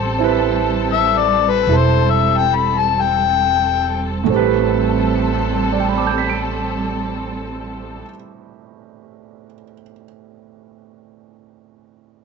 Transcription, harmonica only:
0, 0, Header, 1, 2, 480
1, 0, Start_track
1, 0, Key_signature, 0, "minor"
1, 0, Tempo, 1127820
1, 721, Tempo, 1242236
1, 1201, Tempo, 1357466
1, 1681, Time_signature, 4, 2, 24, 8
1, 1681, Tempo, 1411765
1, 4385, End_track
2, 0, Start_track
2, 0, Title_t, "Harmonica"
2, 0, Program_c, 0, 22
2, 0, Note_on_c, 0, 72, 74
2, 102, Note_off_c, 0, 72, 0
2, 393, Note_on_c, 0, 76, 76
2, 499, Note_on_c, 0, 74, 75
2, 505, Note_off_c, 0, 76, 0
2, 636, Note_on_c, 0, 71, 75
2, 643, Note_off_c, 0, 74, 0
2, 751, Note_on_c, 0, 72, 71
2, 756, Note_off_c, 0, 71, 0
2, 878, Note_on_c, 0, 76, 64
2, 884, Note_off_c, 0, 72, 0
2, 984, Note_on_c, 0, 79, 75
2, 990, Note_off_c, 0, 76, 0
2, 1054, Note_on_c, 0, 83, 82
2, 1059, Note_off_c, 0, 79, 0
2, 1141, Note_on_c, 0, 81, 70
2, 1147, Note_off_c, 0, 83, 0
2, 1227, Note_on_c, 0, 79, 85
2, 1233, Note_off_c, 0, 81, 0
2, 1615, Note_off_c, 0, 79, 0
2, 4385, End_track
0, 0, End_of_file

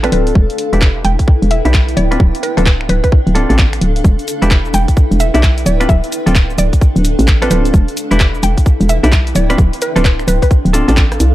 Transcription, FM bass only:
0, 0, Header, 1, 2, 480
1, 0, Start_track
1, 0, Tempo, 461538
1, 369, Time_signature, 4, 2, 24, 8
1, 11801, End_track
2, 0, Start_track
2, 0, Title_t, "FM bass"
2, 0, Program_c, 0, 39
2, 0, Note_on_c, 0, 33, 98
2, 107, Note_off_c, 0, 33, 0
2, 126, Note_on_c, 0, 26, 85
2, 343, Note_off_c, 0, 26, 0
2, 367, Note_on_c, 0, 28, 96
2, 498, Note_off_c, 0, 28, 0
2, 758, Note_on_c, 0, 28, 79
2, 1068, Note_off_c, 0, 28, 0
2, 1087, Note_on_c, 0, 28, 76
2, 1218, Note_off_c, 0, 28, 0
2, 1480, Note_on_c, 0, 28, 87
2, 1678, Note_off_c, 0, 28, 0
2, 1718, Note_on_c, 0, 35, 96
2, 2028, Note_off_c, 0, 35, 0
2, 2047, Note_on_c, 0, 26, 85
2, 2263, Note_off_c, 0, 26, 0
2, 2287, Note_on_c, 0, 26, 100
2, 2418, Note_off_c, 0, 26, 0
2, 2678, Note_on_c, 0, 26, 84
2, 2988, Note_off_c, 0, 26, 0
2, 3005, Note_on_c, 0, 26, 81
2, 3137, Note_off_c, 0, 26, 0
2, 3398, Note_on_c, 0, 26, 85
2, 3597, Note_off_c, 0, 26, 0
2, 3639, Note_on_c, 0, 33, 94
2, 3948, Note_off_c, 0, 33, 0
2, 3966, Note_on_c, 0, 26, 86
2, 4183, Note_off_c, 0, 26, 0
2, 4206, Note_on_c, 0, 28, 104
2, 4338, Note_off_c, 0, 28, 0
2, 4599, Note_on_c, 0, 28, 81
2, 4909, Note_off_c, 0, 28, 0
2, 4926, Note_on_c, 0, 28, 78
2, 5058, Note_off_c, 0, 28, 0
2, 5318, Note_on_c, 0, 28, 85
2, 5517, Note_off_c, 0, 28, 0
2, 5557, Note_on_c, 0, 35, 104
2, 5868, Note_off_c, 0, 35, 0
2, 5886, Note_on_c, 0, 26, 90
2, 6103, Note_off_c, 0, 26, 0
2, 6125, Note_on_c, 0, 26, 100
2, 6257, Note_off_c, 0, 26, 0
2, 6517, Note_on_c, 0, 26, 87
2, 6828, Note_off_c, 0, 26, 0
2, 6844, Note_on_c, 0, 26, 78
2, 6977, Note_off_c, 0, 26, 0
2, 7238, Note_on_c, 0, 26, 89
2, 7437, Note_off_c, 0, 26, 0
2, 7477, Note_on_c, 0, 33, 102
2, 7788, Note_off_c, 0, 33, 0
2, 7806, Note_on_c, 0, 26, 90
2, 8023, Note_off_c, 0, 26, 0
2, 8046, Note_on_c, 0, 28, 103
2, 8178, Note_off_c, 0, 28, 0
2, 8437, Note_on_c, 0, 28, 80
2, 8748, Note_off_c, 0, 28, 0
2, 8766, Note_on_c, 0, 28, 78
2, 8898, Note_off_c, 0, 28, 0
2, 9158, Note_on_c, 0, 28, 93
2, 9357, Note_off_c, 0, 28, 0
2, 9396, Note_on_c, 0, 35, 101
2, 9707, Note_off_c, 0, 35, 0
2, 9726, Note_on_c, 0, 26, 87
2, 9943, Note_off_c, 0, 26, 0
2, 9966, Note_on_c, 0, 26, 100
2, 10098, Note_off_c, 0, 26, 0
2, 10359, Note_on_c, 0, 26, 83
2, 10668, Note_off_c, 0, 26, 0
2, 10686, Note_on_c, 0, 26, 80
2, 10818, Note_off_c, 0, 26, 0
2, 11078, Note_on_c, 0, 26, 90
2, 11277, Note_off_c, 0, 26, 0
2, 11318, Note_on_c, 0, 33, 99
2, 11628, Note_off_c, 0, 33, 0
2, 11649, Note_on_c, 0, 36, 97
2, 11801, Note_off_c, 0, 36, 0
2, 11801, End_track
0, 0, End_of_file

